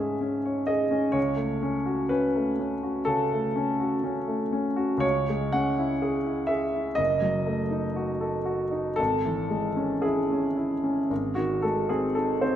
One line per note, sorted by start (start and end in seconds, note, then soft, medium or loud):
0.00 1.19 G#2 soft
0.00 1.19 G#3 soft
0.00 0.21 C#4 soft
0.00 0.68 G#4 soft
0.00 0.45 C#5 soft
0.00 0.69 E5 medium
0.00 1.19 G#5 medium
0.21 0.60 C#4 soft
0.45 0.84 C#5 soft
0.67 1.06 G#4 soft
0.67 1.15 D#5 medium
0.91 1.15 C#4 soft
1.12 3.02 C#2 soft
1.12 2.09 C#5 medium
1.36 1.76 A3 soft
1.63 2.01 C#4 soft
1.86 2.25 F#4 soft
2.09 2.50 C#4 soft
2.09 3.07 B4 medium
2.35 2.74 A3 soft
2.59 2.98 C#4 soft
2.83 3.22 F#4 soft
3.05 3.46 C#3 soft
3.05 5.02 A4 medium
3.33 3.71 A3 soft
3.56 3.94 C#4 soft
3.80 4.18 F#4 soft
4.04 4.42 C#4 soft
4.28 4.67 A3 soft
4.52 4.93 C#4 soft
4.76 5.03 F#4 soft
4.98 6.92 C#2 soft
4.98 5.53 C#5 medium
5.29 5.70 G#3 soft
5.53 5.93 C#4 soft
5.53 6.50 F#5 medium
5.78 6.17 E4 soft
6.02 6.41 G#4 soft
6.24 6.64 E4 soft
6.47 6.88 G#4 soft
6.47 6.97 E5 medium
6.74 6.98 E4 soft
6.95 8.94 F#1 medium
6.95 8.97 D#5 medium
7.22 7.61 F#3 soft
7.46 7.86 A3 soft
7.70 8.11 D#4 soft
7.96 8.36 F#4 soft
8.21 8.62 A4 soft
8.45 8.88 F#4 soft
8.71 8.98 D#4 soft
8.96 11.06 G#1 soft
8.96 10.03 A4 medium
9.25 9.67 E3 soft
9.50 9.93 G#3 soft
9.76 10.19 C#4 soft
10.02 10.46 E4 soft
10.02 11.35 G#4 medium
10.30 10.73 C#4 soft
10.57 10.99 E4 soft
10.84 11.10 C#4 soft
11.10 12.56 G#1 soft
11.35 11.78 D#3 soft
11.35 11.62 F#4 medium
11.62 12.05 G#3 soft
11.62 11.89 A4 medium
11.89 12.31 C4 soft
11.89 12.15 G#4 soft
12.15 12.56 D#4 soft
12.15 12.41 A4 medium
12.41 12.56 C4 soft
12.41 12.56 C5 medium